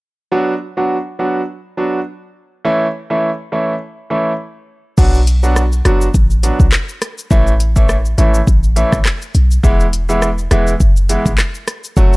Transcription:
0.32 F#3 B3 D4 F#4
0.77 F#3 B3 D4 F#4
1.19 F#3 B3 D4 F#4
1.77 F#3 B3 D4 F#4
2.65 E3 A3 C#4 E4
3.10 E3 A3 C#4 E4
3.52 E3 A3 C#4 E4
4.10 E3 A3 C#4 E4
4.97 B1 F#3 B3 D4 F#4, kick, crash, shaker
5.14 shaker
5.27 closed hi-hat, shaker
5.43 F#3 B3 D4 F#4, shaker
5.56 cross-stick, shaker
5.72 shaker
5.85 F#1 F#3 B3 D4 F#4, cross-stick, closed hi-hat, shaker
6.01 shaker
6.14 A1, kick, shaker
6.30 shaker
6.43 F#3 B3 D4 F#4, closed hi-hat, shaker
6.60 B1, kick, shaker
6.72 cross-stick, clap, shaker
6.89 shaker
7.02 cross-stick, closed hi-hat, shaker
7.18 shaker
7.31 A1 E3 A3 C#4 E4, kick, shaker
7.47 shaker
7.60 closed hi-hat, shaker
7.76 E3 A3 C#4 E4, kick, shaker
7.89 cross-stick, shaker
8.05 shaker
8.18 G#1 E3 A3 C#4 E4, closed hi-hat, shaker
8.34 shaker
8.47 A1, kick, shaker
8.64 shaker
8.76 E3 A3 C#4 E4, closed hi-hat, shaker
8.92 G#1, kick, cross-stick, shaker
9.05 cross-stick, clap, shaker
9.22 shaker
9.35 B1, closed hi-hat, shaker
9.51 shaker
9.63 E1 E3 G#3 B3 E4, kick, shaker
9.80 shaker
9.93 closed hi-hat, shaker
10.09 E3 G#3 B3 E4, shaker
10.22 cross-stick, shaker
10.38 shaker
10.51 E1 E3 G#3 B3 E4, cross-stick, closed hi-hat, shaker
10.67 shaker
10.80 F#1, kick, shaker
10.97 shaker
11.09 E3 G#3 B3 E4, closed hi-hat, shaker
11.26 G#1, kick, shaker
11.38 cross-stick, clap, shaker
11.55 shaker
11.68 cross-stick, closed hi-hat, shaker
11.84 shaker
11.97 F#1 F#3 A3 C#4 F#4, kick, shaker
12.13 shaker

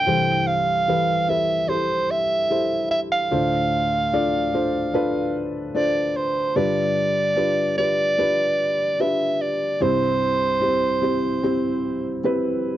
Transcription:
Already playing: G5
0.07 C2 G2 E3 G4 A4 C5
0.47 F5
0.88 E3 G4 A4 B4
1.28 E4 G4 A4 B4 E5
1.68 E4 G4 A4 C5
2.11 E5
2.50 E4 G4 A4 C5
2.91 E5
3.12 F5
3.31 D2 A2 D4 F4 A4 C5
4.13 D4 F4 A4 D5
4.54 D4 F4 A4 C5
4.94 D4 F4 A4 B4
5.75 D4 F4 A4 C5 D5
6.17 C5
6.56 G2 D3 D4 F4 G4 B4 D5
7.36 D4 F4 G4 B4
7.77 D4 F4 G4 B4 D5
8.18 D4 F4 G4 B4
9.00 D4 F4 G4 B4 E5
9.42 D5
9.81 C2 G2 C4 E4 G4 C5
10.61 C4 E4 G4 C5
11.02 C4 E4 G4 C5
11.43 C4 E4 G4 C5
12.24 C4 E4 G4 B4

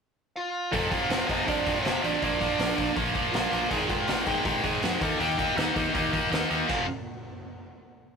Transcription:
0.36 F4 F5
0.72 F1 F2 C3 F3 A4 A5, kick, open hi-hat
0.91 F2 C3 F3 F4 F5, kick, open hi-hat
1.09 F1 F2 C3 F3, snare, open hi-hat
1.28 F1 F2 C3 F3 D#4 D#5, kick, open hi-hat
1.46 F1 F2 C3 F3 D4 D5, kick, open hi-hat
1.66 F2 C3 F3, kick, open hi-hat
1.75 C4 C5
1.84 F1 F2 C3 F3, snare, open hi-hat
2.02 A1 F2 C3 F3 D4 D5, open hi-hat
2.21 A#1 A#2 F3 A#3 D4 D5, kick, open hi-hat
2.40 A#2 F3 A#3, kick, open hi-hat
2.58 A#1 A#2 F3 A#3, snare, open hi-hat
2.77 A#1 A#2 F3 A#3, kick, open hi-hat
2.95 A#1 A#2 F3 A#3, kick, open hi-hat
3.13 A#2 F3 A#3, kick, open hi-hat
3.32 A#1 A#2 F3 A#3 F4 F5, snare, open hi-hat
3.51 A#1 A#2 F3 A#3, open hi-hat
3.69 G#1 G#2 D#3 G#3 G#4 G#5, kick, open hi-hat
3.87 G#2 D#3 G#3 F4 F5, kick, open hi-hat
4.07 G#1 G#2 D#3 G#3, snare, open hi-hat
4.25 G#1 G#2 D#3 G#3 G4 G5, kick, open hi-hat
4.44 G#1 G#2 D#3 G#3 G4 G5, kick, open hi-hat
4.63 G#2 D#3 G#3 G#4 G#5, kick, open hi-hat
4.80 F2 G#2 D#3 G#3, snare, open hi-hat
5.01 D#2 D#3 A#3 D#4 A4 A5, kick, open hi-hat
5.19 D#2 D#3 A#3 D#4 G4 G5, open hi-hat
5.38 D#3 A#3 D#4, kick, open hi-hat
5.56 D#2 D#3 A#3 D#4, snare, open hi-hat
5.75 D#2 D#3 A#3 D#4, kick, open hi-hat
5.93 D#2 D#3 A#3 D#4, kick, open hi-hat
6.12 D#3 A#3 D#4, kick, open hi-hat
6.31 D#2 D#3 A#3 D#4, snare, open hi-hat
6.49 D#2 D#3 A#3 D#4, open hi-hat
6.68 F1 F2 C3 F3 F5, kick, crash

